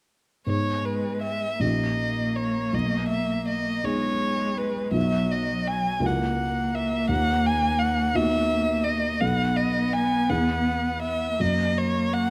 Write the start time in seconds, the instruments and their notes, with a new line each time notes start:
0.47 grand piano G#2 B3 D#4 G#4, cello G#3, violin C#5
0.85 violin B4
1.22 violin E5
1.60 grand piano A#1 C#4 D#4 G4, cello A#3, violin D#5
2.36 violin C#5
2.73 grand piano B1, violin D#5
3.08 violin E5
3.48 violin D#5
3.84 cello G#3, grand piano B3 D#4 G#4, violin C#5
4.57 violin B4
4.91 grand piano B1 B3 D#4 F#4, violin E5
4.98 cello F#3
5.32 violin D#5
5.68 violin G#5
6.00 grand piano C#2 A#3 E4 F#4
6.06 cello A#3, violin F#5
6.75 violin E5
7.09 grand piano D#2, violin F#5
7.46 violin G#5
7.79 violin F#5
8.14 grand piano B3 D#4 F#4, violin E5
8.84 violin D#5
9.20 grand piano B1 B3 D#4 A4, cello B3, violin F#5
9.56 violin D#5
9.93 violin G#5
10.30 grand piano E2 B3 E4 G#4, violin F#5
11.02 violin E5
11.40 grand piano F#2, cello A#3, violin D#5
11.78 violin C#5
12.13 violin F#5